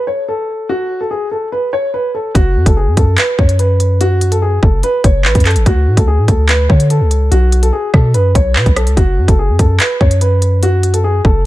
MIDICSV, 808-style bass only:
0, 0, Header, 1, 2, 480
1, 0, Start_track
1, 0, Tempo, 413793
1, 807, Time_signature, 4, 2, 24, 8
1, 13296, End_track
2, 0, Start_track
2, 0, Title_t, "808-style bass"
2, 0, Program_c, 0, 38
2, 2727, Note_on_c, 0, 30, 106
2, 2967, Note_on_c, 0, 42, 104
2, 2984, Note_off_c, 0, 30, 0
2, 3081, Note_off_c, 0, 42, 0
2, 3087, Note_on_c, 0, 30, 104
2, 3327, Note_on_c, 0, 42, 95
2, 3345, Note_off_c, 0, 30, 0
2, 3441, Note_off_c, 0, 42, 0
2, 3447, Note_on_c, 0, 42, 107
2, 3677, Note_off_c, 0, 42, 0
2, 3928, Note_on_c, 0, 42, 103
2, 5321, Note_off_c, 0, 42, 0
2, 5367, Note_on_c, 0, 30, 105
2, 5598, Note_off_c, 0, 30, 0
2, 5848, Note_on_c, 0, 30, 104
2, 6087, Note_on_c, 0, 33, 96
2, 6105, Note_off_c, 0, 30, 0
2, 6201, Note_off_c, 0, 33, 0
2, 6207, Note_on_c, 0, 42, 106
2, 6447, Note_on_c, 0, 32, 109
2, 6464, Note_off_c, 0, 42, 0
2, 6561, Note_off_c, 0, 32, 0
2, 6567, Note_on_c, 0, 38, 107
2, 6807, Note_on_c, 0, 45, 100
2, 6825, Note_off_c, 0, 38, 0
2, 6921, Note_off_c, 0, 45, 0
2, 6927, Note_on_c, 0, 38, 102
2, 7167, Note_on_c, 0, 45, 97
2, 7185, Note_off_c, 0, 38, 0
2, 7281, Note_off_c, 0, 45, 0
2, 7287, Note_on_c, 0, 38, 103
2, 7748, Note_off_c, 0, 38, 0
2, 7768, Note_on_c, 0, 50, 105
2, 8127, Note_on_c, 0, 37, 99
2, 8144, Note_off_c, 0, 50, 0
2, 8469, Note_off_c, 0, 37, 0
2, 8487, Note_on_c, 0, 35, 110
2, 8948, Note_off_c, 0, 35, 0
2, 9207, Note_on_c, 0, 47, 105
2, 9447, Note_on_c, 0, 42, 98
2, 9464, Note_off_c, 0, 47, 0
2, 9675, Note_off_c, 0, 42, 0
2, 9688, Note_on_c, 0, 35, 106
2, 9927, Note_on_c, 0, 47, 98
2, 9944, Note_off_c, 0, 35, 0
2, 10041, Note_off_c, 0, 47, 0
2, 10047, Note_on_c, 0, 35, 104
2, 10287, Note_on_c, 0, 37, 104
2, 10304, Note_off_c, 0, 35, 0
2, 10401, Note_off_c, 0, 37, 0
2, 10407, Note_on_c, 0, 30, 101
2, 10646, Note_on_c, 0, 42, 102
2, 10664, Note_off_c, 0, 30, 0
2, 10761, Note_off_c, 0, 42, 0
2, 10767, Note_on_c, 0, 30, 100
2, 11007, Note_on_c, 0, 42, 99
2, 11024, Note_off_c, 0, 30, 0
2, 11121, Note_off_c, 0, 42, 0
2, 11127, Note_on_c, 0, 42, 105
2, 11357, Note_off_c, 0, 42, 0
2, 11608, Note_on_c, 0, 42, 102
2, 13001, Note_off_c, 0, 42, 0
2, 13047, Note_on_c, 0, 30, 104
2, 13277, Note_off_c, 0, 30, 0
2, 13296, End_track
0, 0, End_of_file